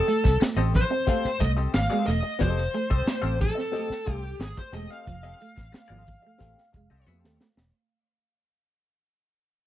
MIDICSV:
0, 0, Header, 1, 9, 480
1, 0, Start_track
1, 0, Tempo, 666667
1, 1737, Time_signature, 4, 2, 24, 8
1, 6957, End_track
2, 0, Start_track
2, 0, Title_t, "Lead electric guitar"
2, 0, Program_c, 0, 29
2, 0, Note_on_c, 0, 69, 79
2, 270, Note_off_c, 0, 69, 0
2, 549, Note_on_c, 0, 72, 108
2, 1010, Note_on_c, 0, 75, 107
2, 1037, Note_off_c, 0, 72, 0
2, 1076, Note_off_c, 0, 75, 0
2, 1254, Note_on_c, 0, 77, 114
2, 1484, Note_off_c, 0, 77, 0
2, 1487, Note_on_c, 0, 75, 113
2, 1738, Note_on_c, 0, 72, 102
2, 1739, Note_off_c, 0, 75, 0
2, 2453, Note_off_c, 0, 72, 0
2, 2456, Note_on_c, 0, 69, 97
2, 2974, Note_off_c, 0, 69, 0
2, 2974, Note_on_c, 0, 67, 97
2, 3180, Note_off_c, 0, 67, 0
2, 3183, Note_on_c, 0, 68, 85
2, 3299, Note_off_c, 0, 68, 0
2, 3302, Note_on_c, 0, 72, 76
2, 3409, Note_on_c, 0, 75, 101
2, 3411, Note_off_c, 0, 72, 0
2, 3531, Note_off_c, 0, 75, 0
2, 3531, Note_on_c, 0, 77, 81
2, 5095, Note_off_c, 0, 77, 0
2, 6957, End_track
3, 0, Start_track
3, 0, Title_t, "Hollow-body jazz guitar"
3, 0, Program_c, 1, 26
3, 407, Note_on_c, 1, 75, 91
3, 413, Note_on_c, 1, 69, 85
3, 415, Note_on_c, 1, 60, 79
3, 416, Note_on_c, 1, 67, 74
3, 526, Note_off_c, 1, 67, 0
3, 527, Note_off_c, 1, 60, 0
3, 528, Note_off_c, 1, 69, 0
3, 529, Note_off_c, 1, 75, 0
3, 768, Note_on_c, 1, 60, 72
3, 775, Note_on_c, 1, 67, 85
3, 775, Note_on_c, 1, 69, 84
3, 781, Note_on_c, 1, 77, 78
3, 924, Note_off_c, 1, 60, 0
3, 927, Note_off_c, 1, 67, 0
3, 927, Note_off_c, 1, 69, 0
3, 930, Note_off_c, 1, 77, 0
3, 1128, Note_on_c, 1, 75, 68
3, 1132, Note_on_c, 1, 69, 59
3, 1134, Note_on_c, 1, 67, 57
3, 1135, Note_on_c, 1, 60, 58
3, 1242, Note_off_c, 1, 60, 0
3, 1244, Note_off_c, 1, 67, 0
3, 1246, Note_off_c, 1, 69, 0
3, 1247, Note_off_c, 1, 75, 0
3, 1366, Note_on_c, 1, 75, 85
3, 1369, Note_on_c, 1, 69, 85
3, 1371, Note_on_c, 1, 67, 85
3, 1376, Note_on_c, 1, 60, 85
3, 1486, Note_off_c, 1, 60, 0
3, 1488, Note_off_c, 1, 69, 0
3, 1490, Note_off_c, 1, 67, 0
3, 1492, Note_off_c, 1, 75, 0
3, 1720, Note_on_c, 1, 60, 93
3, 1726, Note_on_c, 1, 67, 95
3, 1727, Note_on_c, 1, 69, 98
3, 1732, Note_on_c, 1, 75, 98
3, 1879, Note_off_c, 1, 60, 0
3, 1882, Note_off_c, 1, 67, 0
3, 1883, Note_off_c, 1, 69, 0
3, 1885, Note_off_c, 1, 75, 0
3, 2089, Note_on_c, 1, 69, 65
3, 2090, Note_on_c, 1, 75, 67
3, 2092, Note_on_c, 1, 67, 56
3, 2094, Note_on_c, 1, 60, 55
3, 2202, Note_off_c, 1, 60, 0
3, 2207, Note_off_c, 1, 67, 0
3, 2211, Note_off_c, 1, 69, 0
3, 2211, Note_off_c, 1, 75, 0
3, 2315, Note_on_c, 1, 77, 91
3, 2318, Note_on_c, 1, 69, 90
3, 2322, Note_on_c, 1, 67, 84
3, 2323, Note_on_c, 1, 60, 72
3, 2426, Note_off_c, 1, 60, 0
3, 2430, Note_off_c, 1, 67, 0
3, 2435, Note_off_c, 1, 69, 0
3, 2437, Note_off_c, 1, 77, 0
3, 2678, Note_on_c, 1, 60, 79
3, 2684, Note_on_c, 1, 69, 72
3, 2685, Note_on_c, 1, 67, 82
3, 2689, Note_on_c, 1, 75, 83
3, 2793, Note_off_c, 1, 75, 0
3, 2800, Note_off_c, 1, 67, 0
3, 2801, Note_off_c, 1, 69, 0
3, 2838, Note_off_c, 1, 60, 0
3, 2924, Note_on_c, 1, 60, 72
3, 2929, Note_on_c, 1, 67, 69
3, 2929, Note_on_c, 1, 69, 73
3, 2934, Note_on_c, 1, 77, 67
3, 3039, Note_off_c, 1, 69, 0
3, 3041, Note_off_c, 1, 67, 0
3, 3045, Note_off_c, 1, 77, 0
3, 3048, Note_off_c, 1, 60, 0
3, 3402, Note_on_c, 1, 60, 69
3, 3409, Note_on_c, 1, 67, 78
3, 3411, Note_on_c, 1, 69, 73
3, 3415, Note_on_c, 1, 75, 80
3, 3525, Note_off_c, 1, 75, 0
3, 3527, Note_off_c, 1, 60, 0
3, 3527, Note_off_c, 1, 69, 0
3, 3528, Note_off_c, 1, 67, 0
3, 3534, Note_on_c, 1, 75, 59
3, 3535, Note_on_c, 1, 69, 59
3, 3537, Note_on_c, 1, 67, 51
3, 3538, Note_on_c, 1, 60, 60
3, 3644, Note_off_c, 1, 67, 0
3, 3645, Note_off_c, 1, 60, 0
3, 3648, Note_off_c, 1, 69, 0
3, 3653, Note_off_c, 1, 75, 0
3, 3766, Note_on_c, 1, 75, 89
3, 3771, Note_on_c, 1, 69, 69
3, 3773, Note_on_c, 1, 67, 75
3, 3778, Note_on_c, 1, 60, 68
3, 3879, Note_off_c, 1, 60, 0
3, 3883, Note_off_c, 1, 69, 0
3, 3885, Note_off_c, 1, 75, 0
3, 3887, Note_off_c, 1, 67, 0
3, 4232, Note_on_c, 1, 75, 87
3, 4233, Note_on_c, 1, 69, 76
3, 4240, Note_on_c, 1, 67, 76
3, 4244, Note_on_c, 1, 60, 72
3, 4345, Note_off_c, 1, 67, 0
3, 4351, Note_off_c, 1, 60, 0
3, 4351, Note_off_c, 1, 69, 0
3, 4354, Note_off_c, 1, 75, 0
3, 4596, Note_on_c, 1, 60, 72
3, 4602, Note_on_c, 1, 67, 81
3, 4607, Note_on_c, 1, 69, 77
3, 4608, Note_on_c, 1, 77, 85
3, 4758, Note_off_c, 1, 60, 0
3, 4760, Note_off_c, 1, 67, 0
3, 4763, Note_off_c, 1, 69, 0
3, 4764, Note_off_c, 1, 77, 0
3, 4968, Note_on_c, 1, 75, 61
3, 4973, Note_on_c, 1, 67, 53
3, 4973, Note_on_c, 1, 69, 54
3, 4976, Note_on_c, 1, 60, 55
3, 5075, Note_off_c, 1, 60, 0
3, 5077, Note_off_c, 1, 67, 0
3, 5083, Note_off_c, 1, 69, 0
3, 5084, Note_on_c, 1, 59, 83
3, 5086, Note_on_c, 1, 66, 89
3, 5091, Note_off_c, 1, 75, 0
3, 5091, Note_on_c, 1, 68, 79
3, 5098, Note_on_c, 1, 76, 86
3, 5177, Note_off_c, 1, 59, 0
3, 5177, Note_on_c, 1, 60, 83
3, 5180, Note_off_c, 1, 66, 0
3, 5180, Note_on_c, 1, 67, 89
3, 5185, Note_off_c, 1, 68, 0
3, 5185, Note_on_c, 1, 69, 79
3, 5192, Note_off_c, 1, 76, 0
3, 5192, Note_on_c, 1, 77, 86
3, 5311, Note_off_c, 1, 60, 0
3, 5313, Note_off_c, 1, 67, 0
3, 5315, Note_off_c, 1, 69, 0
3, 5319, Note_off_c, 1, 77, 0
3, 6957, End_track
4, 0, Start_track
4, 0, Title_t, "Clean electric guitar"
4, 0, Program_c, 2, 27
4, 59, Note_on_c, 2, 57, 70
4, 161, Note_off_c, 2, 57, 0
4, 413, Note_on_c, 2, 60, 79
4, 517, Note_off_c, 2, 60, 0
4, 652, Note_on_c, 2, 60, 82
4, 756, Note_off_c, 2, 60, 0
4, 1013, Note_on_c, 2, 57, 77
4, 1117, Note_off_c, 2, 57, 0
4, 1387, Note_on_c, 2, 56, 84
4, 1485, Note_off_c, 2, 56, 0
4, 1501, Note_on_c, 2, 57, 83
4, 1601, Note_off_c, 2, 57, 0
4, 1736, Note_on_c, 2, 53, 105
4, 1838, Note_off_c, 2, 53, 0
4, 1976, Note_on_c, 2, 57, 71
4, 2078, Note_off_c, 2, 57, 0
4, 2331, Note_on_c, 2, 60, 76
4, 2435, Note_off_c, 2, 60, 0
4, 2577, Note_on_c, 2, 60, 72
4, 2679, Note_off_c, 2, 60, 0
4, 2933, Note_on_c, 2, 57, 65
4, 3036, Note_off_c, 2, 57, 0
4, 3413, Note_on_c, 2, 56, 74
4, 3516, Note_off_c, 2, 56, 0
4, 3663, Note_on_c, 2, 53, 82
4, 3762, Note_off_c, 2, 53, 0
4, 3900, Note_on_c, 2, 57, 77
4, 4001, Note_off_c, 2, 57, 0
4, 4258, Note_on_c, 2, 53, 74
4, 4359, Note_off_c, 2, 53, 0
4, 4511, Note_on_c, 2, 57, 73
4, 4607, Note_off_c, 2, 57, 0
4, 4869, Note_on_c, 2, 56, 87
4, 4966, Note_off_c, 2, 56, 0
4, 5229, Note_on_c, 2, 57, 88
4, 5326, Note_off_c, 2, 57, 0
4, 5346, Note_on_c, 2, 57, 78
4, 5445, Note_off_c, 2, 57, 0
4, 6957, End_track
5, 0, Start_track
5, 0, Title_t, "Fingered electric bass"
5, 0, Program_c, 3, 33
5, 181, Note_on_c, 3, 36, 89
5, 272, Note_off_c, 3, 36, 0
5, 408, Note_on_c, 3, 33, 98
5, 594, Note_off_c, 3, 33, 0
5, 1012, Note_on_c, 3, 36, 107
5, 1196, Note_off_c, 3, 36, 0
5, 1255, Note_on_c, 3, 32, 100
5, 1347, Note_off_c, 3, 32, 0
5, 1495, Note_on_c, 3, 28, 100
5, 1587, Note_off_c, 3, 28, 0
5, 1732, Note_on_c, 3, 29, 100
5, 1916, Note_off_c, 3, 29, 0
5, 2097, Note_on_c, 3, 36, 102
5, 2188, Note_off_c, 3, 36, 0
5, 2325, Note_on_c, 3, 33, 104
5, 2511, Note_off_c, 3, 33, 0
5, 2935, Note_on_c, 3, 36, 95
5, 3117, Note_off_c, 3, 36, 0
5, 3164, Note_on_c, 3, 32, 96
5, 3260, Note_off_c, 3, 32, 0
5, 3404, Note_on_c, 3, 28, 92
5, 3499, Note_off_c, 3, 28, 0
5, 3653, Note_on_c, 3, 29, 110
5, 3836, Note_off_c, 3, 29, 0
5, 4014, Note_on_c, 3, 33, 80
5, 4106, Note_off_c, 3, 33, 0
5, 4249, Note_on_c, 3, 32, 86
5, 4434, Note_off_c, 3, 32, 0
5, 4614, Note_on_c, 3, 33, 92
5, 4706, Note_off_c, 3, 33, 0
5, 4854, Note_on_c, 3, 29, 74
5, 4947, Note_off_c, 3, 29, 0
5, 4975, Note_on_c, 3, 36, 82
5, 5067, Note_off_c, 3, 36, 0
5, 5091, Note_on_c, 3, 41, 114
5, 5217, Note_off_c, 3, 41, 0
5, 5217, Note_on_c, 3, 39, 72
5, 5308, Note_off_c, 3, 39, 0
5, 5451, Note_on_c, 3, 28, 83
5, 5545, Note_off_c, 3, 28, 0
5, 6957, End_track
6, 0, Start_track
6, 0, Title_t, "Muted clean electric guitar strokes"
6, 174, Note_on_c, 9, 29, 48
6, 246, Note_off_c, 9, 29, 0
6, 533, Note_on_c, 9, 29, 54
6, 605, Note_off_c, 9, 29, 0
6, 1266, Note_on_c, 9, 29, 48
6, 1338, Note_off_c, 9, 29, 0
6, 2089, Note_on_c, 9, 29, 46
6, 2161, Note_off_c, 9, 29, 0
6, 2456, Note_on_c, 9, 29, 48
6, 2528, Note_off_c, 9, 29, 0
6, 4022, Note_on_c, 9, 29, 46
6, 4094, Note_off_c, 9, 29, 0
6, 4383, Note_on_c, 9, 29, 49
6, 4455, Note_off_c, 9, 29, 0
6, 5104, Note_on_c, 9, 29, 42
6, 5176, Note_off_c, 9, 29, 0
6, 6957, End_track
7, 0, Start_track
7, 0, Title_t, "Muted fingered electric bass strokes"
7, 900, Note_on_c, 9, 29, 51
7, 972, Note_off_c, 9, 29, 0
7, 2204, Note_on_c, 9, 29, 46
7, 2276, Note_off_c, 9, 29, 0
7, 2807, Note_on_c, 9, 29, 51
7, 2879, Note_off_c, 9, 29, 0
7, 6957, End_track
8, 0, Start_track
8, 0, Title_t, "Muted hollow-body jazz guitar strokes"
8, 57, Note_on_c, 9, 29, 40
8, 129, Note_off_c, 9, 29, 0
8, 171, Note_on_c, 9, 29, 55
8, 243, Note_off_c, 9, 29, 0
8, 289, Note_on_c, 9, 29, 51
8, 361, Note_off_c, 9, 29, 0
8, 534, Note_on_c, 9, 29, 50
8, 606, Note_off_c, 9, 29, 0
8, 655, Note_on_c, 9, 29, 45
8, 727, Note_off_c, 9, 29, 0
8, 1007, Note_on_c, 9, 29, 45
8, 1079, Note_off_c, 9, 29, 0
8, 1251, Note_on_c, 9, 29, 44
8, 1323, Note_off_c, 9, 29, 0
8, 1495, Note_on_c, 9, 29, 40
8, 1567, Note_off_c, 9, 29, 0
8, 1604, Note_on_c, 9, 29, 47
8, 1676, Note_off_c, 9, 29, 0
8, 1974, Note_on_c, 9, 29, 50
8, 2046, Note_off_c, 9, 29, 0
8, 2435, Note_on_c, 9, 29, 38
8, 2507, Note_off_c, 9, 29, 0
8, 2558, Note_on_c, 9, 29, 49
8, 2630, Note_off_c, 9, 29, 0
8, 2801, Note_on_c, 9, 29, 50
8, 2873, Note_off_c, 9, 29, 0
8, 3047, Note_on_c, 9, 29, 36
8, 3119, Note_off_c, 9, 29, 0
8, 3166, Note_on_c, 9, 29, 43
8, 3238, Note_off_c, 9, 29, 0
8, 3292, Note_on_c, 9, 29, 41
8, 3364, Note_off_c, 9, 29, 0
8, 3652, Note_on_c, 9, 29, 49
8, 3724, Note_off_c, 9, 29, 0
8, 3888, Note_on_c, 9, 29, 47
8, 3960, Note_off_c, 9, 29, 0
8, 4004, Note_on_c, 9, 29, 45
8, 4076, Note_off_c, 9, 29, 0
8, 4119, Note_on_c, 9, 29, 44
8, 4191, Note_off_c, 9, 29, 0
8, 4354, Note_on_c, 9, 29, 40
8, 4426, Note_off_c, 9, 29, 0
8, 4480, Note_on_c, 9, 29, 47
8, 4552, Note_off_c, 9, 29, 0
8, 4841, Note_on_c, 9, 29, 42
8, 4913, Note_off_c, 9, 29, 0
8, 5327, Note_on_c, 9, 29, 43
8, 5399, Note_off_c, 9, 29, 0
8, 5453, Note_on_c, 9, 29, 52
8, 5525, Note_off_c, 9, 29, 0
8, 6957, End_track
9, 0, Start_track
9, 0, Title_t, "Drums"
9, 56, Note_on_c, 9, 62, 43
9, 60, Note_on_c, 9, 54, 58
9, 61, Note_on_c, 9, 42, 77
9, 128, Note_off_c, 9, 62, 0
9, 132, Note_off_c, 9, 54, 0
9, 133, Note_off_c, 9, 42, 0
9, 180, Note_on_c, 9, 36, 85
9, 181, Note_on_c, 9, 38, 32
9, 252, Note_off_c, 9, 36, 0
9, 253, Note_off_c, 9, 38, 0
9, 292, Note_on_c, 9, 62, 38
9, 292, Note_on_c, 9, 63, 77
9, 293, Note_on_c, 9, 54, 104
9, 303, Note_on_c, 9, 38, 114
9, 303, Note_on_c, 9, 42, 104
9, 364, Note_off_c, 9, 62, 0
9, 364, Note_off_c, 9, 63, 0
9, 365, Note_off_c, 9, 54, 0
9, 375, Note_off_c, 9, 38, 0
9, 375, Note_off_c, 9, 42, 0
9, 528, Note_on_c, 9, 54, 53
9, 535, Note_on_c, 9, 42, 77
9, 539, Note_on_c, 9, 62, 35
9, 539, Note_on_c, 9, 64, 86
9, 542, Note_on_c, 9, 36, 96
9, 542, Note_on_c, 9, 38, 31
9, 600, Note_off_c, 9, 54, 0
9, 607, Note_off_c, 9, 42, 0
9, 611, Note_off_c, 9, 62, 0
9, 611, Note_off_c, 9, 64, 0
9, 614, Note_off_c, 9, 36, 0
9, 614, Note_off_c, 9, 38, 0
9, 768, Note_on_c, 9, 54, 51
9, 773, Note_on_c, 9, 36, 88
9, 776, Note_on_c, 9, 62, 33
9, 776, Note_on_c, 9, 63, 80
9, 780, Note_on_c, 9, 42, 90
9, 840, Note_off_c, 9, 54, 0
9, 845, Note_off_c, 9, 36, 0
9, 848, Note_off_c, 9, 62, 0
9, 848, Note_off_c, 9, 63, 0
9, 852, Note_off_c, 9, 42, 0
9, 896, Note_on_c, 9, 38, 37
9, 968, Note_off_c, 9, 38, 0
9, 1011, Note_on_c, 9, 54, 37
9, 1013, Note_on_c, 9, 42, 76
9, 1014, Note_on_c, 9, 62, 38
9, 1015, Note_on_c, 9, 36, 86
9, 1083, Note_off_c, 9, 54, 0
9, 1085, Note_off_c, 9, 42, 0
9, 1086, Note_off_c, 9, 62, 0
9, 1087, Note_off_c, 9, 36, 0
9, 1251, Note_on_c, 9, 42, 83
9, 1251, Note_on_c, 9, 54, 110
9, 1254, Note_on_c, 9, 38, 107
9, 1257, Note_on_c, 9, 62, 34
9, 1257, Note_on_c, 9, 63, 68
9, 1323, Note_off_c, 9, 42, 0
9, 1323, Note_off_c, 9, 54, 0
9, 1326, Note_off_c, 9, 38, 0
9, 1329, Note_off_c, 9, 62, 0
9, 1329, Note_off_c, 9, 63, 0
9, 1482, Note_on_c, 9, 54, 46
9, 1496, Note_on_c, 9, 38, 31
9, 1496, Note_on_c, 9, 46, 71
9, 1499, Note_on_c, 9, 63, 63
9, 1554, Note_off_c, 9, 54, 0
9, 1568, Note_off_c, 9, 38, 0
9, 1568, Note_off_c, 9, 46, 0
9, 1571, Note_off_c, 9, 63, 0
9, 1614, Note_on_c, 9, 42, 45
9, 1686, Note_off_c, 9, 42, 0
9, 1726, Note_on_c, 9, 54, 39
9, 1730, Note_on_c, 9, 62, 42
9, 1730, Note_on_c, 9, 64, 89
9, 1734, Note_on_c, 9, 42, 84
9, 1735, Note_on_c, 9, 36, 103
9, 1798, Note_off_c, 9, 54, 0
9, 1802, Note_off_c, 9, 62, 0
9, 1802, Note_off_c, 9, 64, 0
9, 1806, Note_off_c, 9, 42, 0
9, 1807, Note_off_c, 9, 36, 0
9, 1856, Note_on_c, 9, 38, 39
9, 1928, Note_off_c, 9, 38, 0
9, 1969, Note_on_c, 9, 54, 55
9, 1975, Note_on_c, 9, 42, 72
9, 1979, Note_on_c, 9, 62, 42
9, 2041, Note_off_c, 9, 54, 0
9, 2047, Note_off_c, 9, 42, 0
9, 2051, Note_off_c, 9, 62, 0
9, 2095, Note_on_c, 9, 36, 91
9, 2167, Note_off_c, 9, 36, 0
9, 2210, Note_on_c, 9, 54, 92
9, 2211, Note_on_c, 9, 63, 85
9, 2213, Note_on_c, 9, 38, 111
9, 2213, Note_on_c, 9, 42, 107
9, 2282, Note_off_c, 9, 54, 0
9, 2283, Note_off_c, 9, 63, 0
9, 2285, Note_off_c, 9, 38, 0
9, 2285, Note_off_c, 9, 42, 0
9, 2447, Note_on_c, 9, 54, 50
9, 2453, Note_on_c, 9, 42, 80
9, 2458, Note_on_c, 9, 36, 99
9, 2461, Note_on_c, 9, 62, 37
9, 2461, Note_on_c, 9, 64, 79
9, 2519, Note_off_c, 9, 54, 0
9, 2525, Note_off_c, 9, 42, 0
9, 2530, Note_off_c, 9, 36, 0
9, 2533, Note_off_c, 9, 62, 0
9, 2533, Note_off_c, 9, 64, 0
9, 2582, Note_on_c, 9, 38, 41
9, 2654, Note_off_c, 9, 38, 0
9, 2688, Note_on_c, 9, 54, 45
9, 2698, Note_on_c, 9, 62, 33
9, 2698, Note_on_c, 9, 63, 76
9, 2705, Note_on_c, 9, 42, 90
9, 2760, Note_off_c, 9, 54, 0
9, 2770, Note_off_c, 9, 62, 0
9, 2770, Note_off_c, 9, 63, 0
9, 2777, Note_off_c, 9, 42, 0
9, 2817, Note_on_c, 9, 38, 35
9, 2889, Note_off_c, 9, 38, 0
9, 2934, Note_on_c, 9, 36, 88
9, 2937, Note_on_c, 9, 42, 63
9, 3006, Note_off_c, 9, 36, 0
9, 3009, Note_off_c, 9, 42, 0
9, 3169, Note_on_c, 9, 42, 87
9, 3171, Note_on_c, 9, 63, 66
9, 3173, Note_on_c, 9, 38, 113
9, 3176, Note_on_c, 9, 54, 114
9, 3241, Note_off_c, 9, 42, 0
9, 3243, Note_off_c, 9, 63, 0
9, 3245, Note_off_c, 9, 38, 0
9, 3248, Note_off_c, 9, 54, 0
9, 3295, Note_on_c, 9, 36, 90
9, 3367, Note_off_c, 9, 36, 0
9, 3408, Note_on_c, 9, 54, 50
9, 3416, Note_on_c, 9, 46, 73
9, 3417, Note_on_c, 9, 62, 31
9, 3417, Note_on_c, 9, 63, 74
9, 3480, Note_off_c, 9, 54, 0
9, 3488, Note_off_c, 9, 46, 0
9, 3489, Note_off_c, 9, 62, 0
9, 3489, Note_off_c, 9, 63, 0
9, 3535, Note_on_c, 9, 42, 51
9, 3607, Note_off_c, 9, 42, 0
9, 3649, Note_on_c, 9, 62, 39
9, 3649, Note_on_c, 9, 64, 87
9, 3650, Note_on_c, 9, 42, 88
9, 3653, Note_on_c, 9, 36, 96
9, 3721, Note_off_c, 9, 62, 0
9, 3721, Note_off_c, 9, 64, 0
9, 3722, Note_off_c, 9, 42, 0
9, 3725, Note_off_c, 9, 36, 0
9, 3891, Note_on_c, 9, 62, 45
9, 3892, Note_on_c, 9, 54, 57
9, 3895, Note_on_c, 9, 42, 73
9, 3963, Note_off_c, 9, 62, 0
9, 3964, Note_off_c, 9, 54, 0
9, 3967, Note_off_c, 9, 42, 0
9, 4015, Note_on_c, 9, 36, 89
9, 4016, Note_on_c, 9, 38, 33
9, 4087, Note_off_c, 9, 36, 0
9, 4088, Note_off_c, 9, 38, 0
9, 4126, Note_on_c, 9, 62, 38
9, 4126, Note_on_c, 9, 63, 90
9, 4131, Note_on_c, 9, 54, 92
9, 4134, Note_on_c, 9, 42, 98
9, 4135, Note_on_c, 9, 38, 108
9, 4198, Note_off_c, 9, 62, 0
9, 4198, Note_off_c, 9, 63, 0
9, 4203, Note_off_c, 9, 54, 0
9, 4206, Note_off_c, 9, 42, 0
9, 4207, Note_off_c, 9, 38, 0
9, 4241, Note_on_c, 9, 63, 54
9, 4313, Note_off_c, 9, 63, 0
9, 4364, Note_on_c, 9, 62, 39
9, 4364, Note_on_c, 9, 64, 78
9, 4368, Note_on_c, 9, 54, 47
9, 4369, Note_on_c, 9, 42, 78
9, 4378, Note_on_c, 9, 36, 97
9, 4436, Note_off_c, 9, 62, 0
9, 4436, Note_off_c, 9, 64, 0
9, 4440, Note_off_c, 9, 54, 0
9, 4441, Note_off_c, 9, 42, 0
9, 4450, Note_off_c, 9, 36, 0
9, 4610, Note_on_c, 9, 62, 33
9, 4610, Note_on_c, 9, 63, 69
9, 4611, Note_on_c, 9, 54, 51
9, 4612, Note_on_c, 9, 36, 85
9, 4618, Note_on_c, 9, 42, 92
9, 4682, Note_off_c, 9, 62, 0
9, 4682, Note_off_c, 9, 63, 0
9, 4683, Note_off_c, 9, 54, 0
9, 4684, Note_off_c, 9, 36, 0
9, 4690, Note_off_c, 9, 42, 0
9, 4739, Note_on_c, 9, 38, 33
9, 4811, Note_off_c, 9, 38, 0
9, 4849, Note_on_c, 9, 42, 72
9, 4853, Note_on_c, 9, 36, 92
9, 4857, Note_on_c, 9, 54, 33
9, 4921, Note_off_c, 9, 42, 0
9, 4925, Note_off_c, 9, 36, 0
9, 4929, Note_off_c, 9, 54, 0
9, 4973, Note_on_c, 9, 42, 57
9, 5045, Note_off_c, 9, 42, 0
9, 5095, Note_on_c, 9, 62, 31
9, 5095, Note_on_c, 9, 63, 75
9, 5099, Note_on_c, 9, 54, 116
9, 5167, Note_off_c, 9, 62, 0
9, 5167, Note_off_c, 9, 63, 0
9, 5171, Note_off_c, 9, 54, 0
9, 5216, Note_on_c, 9, 38, 52
9, 5288, Note_off_c, 9, 38, 0
9, 5333, Note_on_c, 9, 38, 86
9, 5335, Note_on_c, 9, 54, 44
9, 5336, Note_on_c, 9, 62, 34
9, 5336, Note_on_c, 9, 63, 75
9, 5405, Note_off_c, 9, 38, 0
9, 5407, Note_off_c, 9, 54, 0
9, 5408, Note_off_c, 9, 62, 0
9, 5408, Note_off_c, 9, 63, 0
9, 5452, Note_on_c, 9, 38, 95
9, 5524, Note_off_c, 9, 38, 0
9, 6957, End_track
0, 0, End_of_file